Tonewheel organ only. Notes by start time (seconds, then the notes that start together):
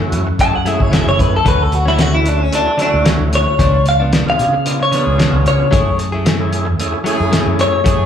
0.00 A3 C#4 E4 F#4
0.39 A3 C#4 E4 G#4
0.65 A3 C#4 E4 G#4
2.13 A3 C#4 E4 F#4
2.52 A3 C#4 E4 F#4
2.79 A3 C#4 E4 F#4
4.26 B3 D4 F4 G#4
4.65 B3 D4 F4 G#4
4.92 B3 D4 F4 G#4
6.39 A3 C#4 E4 G#4
6.79 A3 C#4 E4 G#4
7.05 A3 C#4 E4 G#4